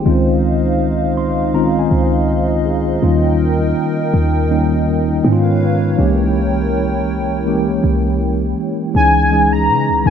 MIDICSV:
0, 0, Header, 1, 5, 480
1, 0, Start_track
1, 0, Tempo, 740741
1, 38, Time_signature, 4, 2, 24, 8
1, 6545, End_track
2, 0, Start_track
2, 0, Title_t, "Soft synth lead"
2, 0, Program_c, 0, 80
2, 5804, Note_on_c, 0, 80, 123
2, 6173, Note_on_c, 0, 82, 115
2, 6183, Note_off_c, 0, 80, 0
2, 6520, Note_off_c, 0, 82, 0
2, 6524, Note_on_c, 0, 80, 103
2, 6545, Note_off_c, 0, 80, 0
2, 6545, End_track
3, 0, Start_track
3, 0, Title_t, "Analog synth pad"
3, 0, Program_c, 1, 89
3, 0, Note_on_c, 1, 63, 75
3, 0, Note_on_c, 1, 72, 75
3, 39, Note_on_c, 1, 75, 72
3, 40, Note_on_c, 1, 77, 83
3, 1931, Note_off_c, 1, 72, 0
3, 1939, Note_off_c, 1, 77, 0
3, 1957, Note_on_c, 1, 70, 69
3, 1957, Note_on_c, 1, 79, 87
3, 3372, Note_off_c, 1, 75, 0
3, 3383, Note_off_c, 1, 70, 0
3, 3383, Note_off_c, 1, 79, 0
3, 3395, Note_on_c, 1, 77, 82
3, 3396, Note_on_c, 1, 71, 65
3, 3396, Note_on_c, 1, 73, 72
3, 3851, Note_off_c, 1, 63, 0
3, 3872, Note_off_c, 1, 71, 0
3, 3872, Note_off_c, 1, 77, 0
3, 3874, Note_on_c, 1, 79, 88
3, 3875, Note_on_c, 1, 64, 78
3, 3875, Note_on_c, 1, 70, 71
3, 5773, Note_off_c, 1, 73, 0
3, 5777, Note_off_c, 1, 64, 0
3, 5777, Note_off_c, 1, 70, 0
3, 5777, Note_off_c, 1, 79, 0
3, 5798, Note_on_c, 1, 52, 74
3, 5798, Note_on_c, 1, 56, 75
3, 6545, Note_off_c, 1, 52, 0
3, 6545, Note_off_c, 1, 56, 0
3, 6545, End_track
4, 0, Start_track
4, 0, Title_t, "Tine electric piano"
4, 0, Program_c, 2, 4
4, 0, Control_c, 2, 64, 127
4, 0, Note_on_c, 2, 72, 63
4, 32, Note_on_c, 2, 51, 89
4, 35, Note_on_c, 2, 56, 78
4, 38, Note_on_c, 2, 60, 79
4, 42, Note_on_c, 2, 61, 78
4, 45, Note_on_c, 2, 65, 92
4, 47, Control_c, 2, 64, 0
4, 156, Note_off_c, 2, 72, 0
4, 164, Control_c, 2, 64, 127
4, 761, Note_on_c, 2, 84, 75
4, 830, Note_off_c, 2, 51, 0
4, 832, Note_off_c, 2, 56, 0
4, 833, Note_off_c, 2, 60, 0
4, 835, Note_off_c, 2, 61, 0
4, 837, Note_off_c, 2, 65, 0
4, 982, Note_off_c, 2, 84, 0
4, 995, Note_on_c, 2, 51, 82
4, 998, Note_on_c, 2, 56, 76
4, 1001, Note_on_c, 2, 82, 76
4, 1002, Note_on_c, 2, 60, 74
4, 1005, Note_on_c, 2, 61, 79
4, 1008, Note_on_c, 2, 65, 90
4, 1148, Note_off_c, 2, 82, 0
4, 1161, Note_on_c, 2, 80, 70
4, 1308, Note_off_c, 2, 80, 0
4, 1321, Note_on_c, 2, 77, 75
4, 1468, Note_off_c, 2, 77, 0
4, 1480, Note_on_c, 2, 75, 73
4, 1483, Note_off_c, 2, 65, 0
4, 1599, Note_off_c, 2, 75, 0
4, 1609, Note_on_c, 2, 65, 64
4, 1610, Note_on_c, 2, 75, 69
4, 1713, Note_off_c, 2, 65, 0
4, 1721, Note_on_c, 2, 68, 74
4, 1792, Note_off_c, 2, 51, 0
4, 1793, Note_off_c, 2, 56, 0
4, 1795, Note_off_c, 2, 60, 0
4, 1797, Note_off_c, 2, 61, 0
4, 1842, Note_off_c, 2, 68, 0
4, 1851, Note_on_c, 2, 65, 65
4, 1934, Note_off_c, 2, 75, 0
4, 1955, Note_on_c, 2, 51, 87
4, 1957, Note_on_c, 2, 55, 80
4, 1960, Note_off_c, 2, 65, 0
4, 1961, Note_on_c, 2, 58, 75
4, 1964, Note_on_c, 2, 61, 78
4, 1966, Control_c, 2, 64, 0
4, 1968, Note_on_c, 2, 65, 90
4, 2088, Control_c, 2, 64, 127
4, 2752, Note_off_c, 2, 51, 0
4, 2753, Note_off_c, 2, 55, 0
4, 2755, Note_off_c, 2, 58, 0
4, 2756, Note_off_c, 2, 61, 0
4, 2758, Note_off_c, 2, 65, 0
4, 2913, Note_on_c, 2, 51, 80
4, 2917, Note_on_c, 2, 55, 76
4, 2921, Note_on_c, 2, 58, 75
4, 2924, Note_on_c, 2, 61, 77
4, 2927, Note_on_c, 2, 63, 93
4, 3386, Note_off_c, 2, 51, 0
4, 3394, Note_on_c, 2, 51, 87
4, 3396, Note_off_c, 2, 61, 0
4, 3397, Note_off_c, 2, 55, 0
4, 3397, Note_on_c, 2, 56, 76
4, 3399, Note_off_c, 2, 58, 0
4, 3400, Note_on_c, 2, 59, 76
4, 3402, Note_off_c, 2, 63, 0
4, 3403, Note_on_c, 2, 61, 79
4, 3407, Control_c, 2, 64, 0
4, 3407, Note_on_c, 2, 64, 77
4, 3448, Note_off_c, 2, 64, 0
4, 3449, Note_on_c, 2, 65, 98
4, 3498, Control_c, 2, 64, 127
4, 3797, Note_off_c, 2, 51, 0
4, 3799, Note_off_c, 2, 56, 0
4, 3800, Note_off_c, 2, 59, 0
4, 3802, Note_off_c, 2, 61, 0
4, 3825, Note_off_c, 2, 65, 0
4, 3873, Note_on_c, 2, 52, 86
4, 3876, Note_on_c, 2, 56, 82
4, 3880, Note_on_c, 2, 58, 82
4, 3883, Note_on_c, 2, 61, 73
4, 3886, Note_on_c, 2, 67, 92
4, 3887, Control_c, 2, 64, 0
4, 4001, Control_c, 2, 64, 127
4, 4671, Note_off_c, 2, 52, 0
4, 4672, Note_off_c, 2, 56, 0
4, 4674, Note_off_c, 2, 58, 0
4, 4676, Note_off_c, 2, 61, 0
4, 4678, Note_off_c, 2, 67, 0
4, 4834, Note_on_c, 2, 52, 78
4, 4837, Note_on_c, 2, 56, 75
4, 4839, Note_on_c, 2, 58, 76
4, 4843, Note_on_c, 2, 61, 72
4, 4846, Note_on_c, 2, 67, 88
4, 5631, Note_off_c, 2, 52, 0
4, 5633, Note_off_c, 2, 56, 0
4, 5634, Note_off_c, 2, 58, 0
4, 5636, Note_off_c, 2, 61, 0
4, 5637, Note_off_c, 2, 67, 0
4, 5792, Note_on_c, 2, 52, 78
4, 5796, Note_on_c, 2, 56, 70
4, 5798, Note_on_c, 2, 61, 74
4, 5802, Note_on_c, 2, 63, 69
4, 5805, Note_on_c, 2, 68, 85
4, 5807, Control_c, 2, 64, 0
4, 5918, Control_c, 2, 64, 127
4, 5996, Note_off_c, 2, 52, 0
4, 5997, Note_off_c, 2, 56, 0
4, 5999, Note_off_c, 2, 61, 0
4, 6000, Note_off_c, 2, 63, 0
4, 6002, Note_off_c, 2, 68, 0
4, 6032, Note_on_c, 2, 52, 79
4, 6035, Note_on_c, 2, 56, 69
4, 6038, Note_on_c, 2, 61, 70
4, 6042, Note_on_c, 2, 63, 68
4, 6045, Note_on_c, 2, 68, 85
4, 6437, Note_off_c, 2, 52, 0
4, 6438, Note_off_c, 2, 56, 0
4, 6440, Note_off_c, 2, 61, 0
4, 6441, Note_off_c, 2, 63, 0
4, 6443, Note_off_c, 2, 68, 0
4, 6512, Note_on_c, 2, 51, 59
4, 6515, Note_on_c, 2, 56, 70
4, 6519, Note_on_c, 2, 61, 71
4, 6522, Note_on_c, 2, 63, 73
4, 6525, Note_on_c, 2, 70, 85
4, 6545, Note_off_c, 2, 51, 0
4, 6545, Note_off_c, 2, 56, 0
4, 6545, Note_off_c, 2, 61, 0
4, 6545, Note_off_c, 2, 63, 0
4, 6545, Note_off_c, 2, 70, 0
4, 6545, End_track
5, 0, Start_track
5, 0, Title_t, "808-style bass"
5, 0, Program_c, 3, 38
5, 39, Note_on_c, 3, 37, 111
5, 1212, Note_off_c, 3, 37, 0
5, 1240, Note_on_c, 3, 37, 98
5, 1933, Note_off_c, 3, 37, 0
5, 1960, Note_on_c, 3, 39, 102
5, 2420, Note_off_c, 3, 39, 0
5, 2681, Note_on_c, 3, 39, 107
5, 3373, Note_off_c, 3, 39, 0
5, 3399, Note_on_c, 3, 44, 105
5, 3859, Note_off_c, 3, 44, 0
5, 3879, Note_on_c, 3, 36, 105
5, 5052, Note_off_c, 3, 36, 0
5, 5080, Note_on_c, 3, 36, 101
5, 5539, Note_off_c, 3, 36, 0
5, 5799, Note_on_c, 3, 37, 105
5, 6279, Note_on_c, 3, 49, 98
5, 6289, Note_off_c, 3, 37, 0
5, 6408, Note_on_c, 3, 37, 100
5, 6418, Note_off_c, 3, 49, 0
5, 6513, Note_off_c, 3, 37, 0
5, 6518, Note_on_c, 3, 36, 106
5, 6545, Note_off_c, 3, 36, 0
5, 6545, End_track
0, 0, End_of_file